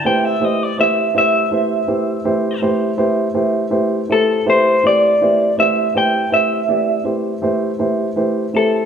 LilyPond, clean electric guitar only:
\new Staff \with { instrumentName = "Clean electric guitar" } { \time 12/8 \key a \minor \tempo 4. = 54 g''16 e''16 dis''16 d''16 e''8 e''2 r2 a'8 | c''8 d''4 e''8 g''8 e''4 r2 a'8 | }